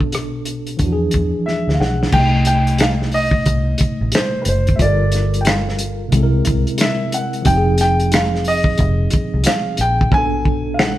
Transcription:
0.00 0.75 B1 medium
0.00 0.75 B2 medium
0.00 0.76 B3 medium
0.00 0.78 D4 medium
0.00 0.79 A4 medium
0.00 kick medium
0.12 cross-stick loud
0.12 closed hi-hat medium
0.45 closed hi-hat medium
0.67 closed hi-hat soft
0.77 1.07 E2 medium
0.77 2.09 E3 medium
0.77 2.10 D4 medium
0.77 kick medium
0.77 closed hi-hat medium
0.83 2.12 F3 medium
0.83 0.90 F#4 medium
0.92 2.16 G#4 medium
1.11 1.31 E2 medium
1.11 kick medium
1.11 closed hi-hat medium
1.46 1.75 E5 medium
1.46 snare soft
1.68 1.77 D2 medium
1.68 snare soft
1.74 1.79 F5 medium
1.80 2.06 B1 medium
1.80 2.14 F#5 medium
1.80 snare medium
2.03 snare medium
2.10 3.42 C2 loud
2.10 4.74 C3 medium
2.10 4.75 A3 medium
2.10 2.45 G5 loud
2.10 kick loud
2.10 crash medium
2.16 4.77 D#4 medium
2.16 4.78 D#5 medium
2.45 2.81 G5 loud
2.45 closed hi-hat medium
2.67 closed hi-hat soft
2.78 2.89 F5 medium
2.78 finger snap medium
2.78 snare loud
2.78 closed hi-hat medium
3.02 snare soft
3.12 4.16 D#5 loud
3.12 open hi-hat soft
3.31 kick medium
3.46 3.74 C2 medium
3.46 kick medium
3.46 closed hi-hat medium
3.78 kick medium
3.78 closed hi-hat medium
4.01 4.11 A1 medium
4.12 4.40 C5 medium
4.12 finger snap medium
4.12 snare loud
4.12 closed hi-hat medium
4.42 4.73 F#1 medium
4.42 4.46 B4 medium
4.42 closed hi-hat medium
4.49 4.76 C5 medium
4.67 kick medium
4.67 closed hi-hat soft
4.76 6.09 G1 loud
4.76 6.08 G3 medium
4.76 6.09 F4 medium
4.76 4.80 E5 medium
4.76 kick medium
4.76 closed hi-hat medium
4.82 6.11 A4 medium
4.82 6.12 A#4 medium
4.82 5.38 D5 medium
5.12 snare soft
5.12 closed hi-hat medium
5.34 closed hi-hat soft
5.41 5.46 G5 medium
5.45 6.09 F5 medium
5.45 finger snap medium
5.45 snare loud
5.45 closed hi-hat medium
5.69 snare soft
5.79 closed hi-hat medium
6.08 7.41 C3 medium
6.08 7.42 G#3 medium
6.12 6.40 C2 loud
6.12 7.43 C4 medium
6.12 7.44 E4 medium
6.12 kick medium
6.12 closed hi-hat medium
6.17 6.23 A4 medium
6.23 7.48 A#4 medium
6.45 6.64 C2 medium
6.45 kick medium
6.45 closed hi-hat medium
6.67 closed hi-hat soft
6.78 7.14 E5 medium
6.78 finger snap medium
6.78 snare loud
6.78 closed hi-hat medium
7.12 7.44 F#5 medium
7.12 closed hi-hat medium
7.33 closed hi-hat soft
7.42 10.06 F3 medium
7.42 10.08 C4 medium
7.42 kick loud
7.42 closed hi-hat medium
7.46 8.75 F1 loud
7.46 10.09 D#4 medium
7.46 7.77 G5 medium
7.51 7.56 G4 medium
7.57 10.14 G#4 medium
7.78 8.14 G5 loud
7.78 snare soft
7.78 closed hi-hat medium
8.00 closed hi-hat soft
8.12 8.45 F5 medium
8.12 finger snap medium
8.12 snare loud
8.12 closed hi-hat medium
8.35 snare soft
8.45 9.43 D#5 loud
8.45 open hi-hat soft
8.64 kick medium
8.78 9.07 F1 medium
8.78 kick medium
8.78 closed hi-hat medium
9.10 kick medium
9.10 closed hi-hat medium
9.34 9.44 C2 medium
9.44 9.80 F5 medium
9.44 finger snap medium
9.44 snare loud
9.44 closed hi-hat medium
9.77 10.12 A#1 medium
9.77 10.14 G5 loud
9.77 closed hi-hat medium
10.01 kick medium
10.09 10.98 B1 loud
10.09 10.98 B2 medium
10.09 10.98 B3 medium
10.09 kick loud
10.14 10.98 D4 medium
10.14 10.76 G#5 loud
10.18 10.98 A4 medium
10.45 kick medium
10.74 10.79 F5 medium
10.79 10.98 F#5 medium
10.79 finger snap medium
10.79 snare loud

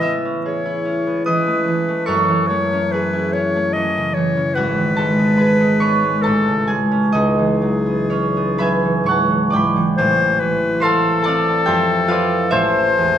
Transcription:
0.00 2.11 A2 soft
0.00 1.27 E3 soft
0.00 0.64 E4 soft
0.00 0.44 G#4 soft
0.00 2.11 B4 medium
0.00 0.18 D#5 medium
0.00 3.93 E5 medium
0.00 2.10 B5 medium
0.00 3.91 E6 medium
0.04 1.06 B3 soft
0.25 0.84 C#4 soft
0.45 2.92 G#4 soft
0.45 1.24 C#5 soft
0.65 3.12 E4 soft
0.85 2.71 C#4 soft
1.07 2.11 B3 soft
1.26 1.66 E3 soft
1.26 2.08 B4 medium
1.26 2.11 D#5 medium
1.26 2.65 D#6 medium
1.47 1.87 A3 soft
1.68 2.11 E3 soft
1.89 2.49 A3 soft
2.06 4.60 F#2 medium
2.06 2.49 A4 medium
2.06 4.60 C#5 medium
2.06 4.59 C#6 medium
2.29 3.75 E3 soft
2.48 3.55 A3 soft
2.48 2.93 C#5 medium
2.72 3.34 C#4 soft
2.92 5.38 G#4 soft
2.92 3.34 B4 medium
3.13 4.60 E4 soft
3.33 4.61 C#4 soft
3.33 3.75 C#5 medium
3.56 4.61 A3 soft
3.73 4.16 E3 soft
3.73 4.16 D#5 medium
3.98 4.36 C#3 soft
4.14 4.60 E3 soft
4.14 4.56 C#5 medium
4.37 4.60 C#3 soft
4.55 6.29 G#1 medium
4.55 6.29 F#4 medium
4.55 6.24 B4 medium
4.55 6.28 F#5 medium
4.78 6.29 D#3 soft
4.96 6.02 G#3 soft
4.96 6.24 A4 medium
4.96 5.68 A5 medium
5.19 5.81 B3 soft
5.37 6.68 G#4 soft
5.37 6.29 B4 soft
5.37 6.28 B5 medium
5.61 6.29 D#4 soft
5.80 6.29 B3 soft
5.80 8.09 C#5 medium
5.80 9.05 C#6 medium
6.04 6.68 G#3 soft
6.22 7.19 A1 soft
6.22 6.83 A4 medium
6.22 7.19 A4 soft
6.22 7.18 A5 medium
6.48 7.19 C#3 soft
6.67 10.02 G#3 soft
6.67 10.02 G#4 soft
6.67 8.59 G#5 medium
6.91 8.09 C#4 soft
7.12 10.02 C#2 medium
7.12 8.11 D#4 medium
7.12 9.50 G#4 medium
7.12 8.80 D#5 medium
7.39 8.84 E3 soft
7.62 8.60 F#3 soft
7.86 8.36 B3 soft
8.10 10.01 C#4 soft
8.10 10.02 D#4 soft
8.10 9.05 C#5 medium
8.37 10.02 B3 soft
8.58 10.02 F#3 soft
8.58 10.01 B4 medium
8.58 11.66 E5 medium
8.58 10.01 G#5 medium
8.58 9.52 B5 medium
8.85 9.29 E3 soft
9.04 9.53 G#2 soft
9.04 10.01 C#5 medium
9.04 10.01 C#6 medium
9.08 10.01 F#5 medium
9.08 10.81 A5 medium
9.30 9.75 E3 soft
9.50 10.02 G#2 soft
9.50 10.84 D5 medium
9.50 11.64 G5 medium
9.50 11.72 D6 medium
9.56 10.84 B5 medium
9.76 10.02 E3 soft
9.97 11.72 A1 medium
9.97 11.72 A2 medium
9.97 10.42 C5 medium
10.40 11.72 E3 soft
10.40 10.85 B4 medium
10.80 13.18 A3 soft
10.80 12.52 A4 medium
10.80 11.65 C5 medium
10.80 11.24 F5 medium
10.80 13.18 C6 medium
10.85 11.23 A5 medium
11.22 12.51 A4 medium
11.22 11.71 D5 medium
11.22 13.18 A5 loud
11.26 12.09 C4 soft
11.26 12.07 F5 medium
11.66 12.56 F2 medium
11.66 12.55 G4 medium
11.66 12.50 C5 medium
11.66 12.49 E5 medium
11.66 12.39 G5 medium
12.08 13.18 C4 soft
12.08 13.18 E4 soft
12.08 12.56 F4 medium
12.08 13.18 B4 medium
12.08 12.56 D5 medium
12.08 12.55 F5 medium
12.51 13.18 A1 medium
12.51 13.18 A4 medium
12.51 13.18 C5 medium
12.51 13.18 E5 loud
12.98 13.18 E2 soft

